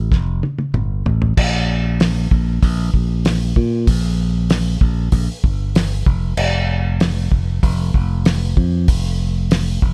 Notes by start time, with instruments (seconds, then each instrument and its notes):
0.12 fingered electric bass F1, kick, snare
0.43 high tom
0.59 high tom
0.74 fingered electric bass G1, mid tom
1.06 fingered electric bass A1, floor tom
1.22 floor tom
1.37 fingered electric bass A#1, kick, crash
2.00 snare, open hi-hat
2.31 fingered electric bass A#1, kick
2.62 fingered electric bass A#1, kick, open hi-hat
2.94 fingered electric bass A#1, kick
3.25 snare, open hi-hat
3.56 fingered electric bass A#2, kick
3.87 fingered electric bass A#1, kick, open hi-hat
4.50 snare, open hi-hat
4.81 fingered electric bass A#1, kick
5.12 fingered electric bass A#1, kick, open hi-hat
5.44 fingered electric bass G1, kick
5.75 snare, open hi-hat
6.06 fingered electric bass F1, kick
6.37 fingered electric bass F1, crash
7.00 snare, open hi-hat
7.32 fingered electric bass F1, kick
7.63 fingered electric bass F1, kick, open hi-hat
7.94 fingered electric bass F1, kick
8.25 snare, open hi-hat
8.57 fingered electric bass F2, kick
8.88 fingered electric bass F1, kick, open hi-hat
9.51 snare, open hi-hat
9.82 fingered electric bass F1, kick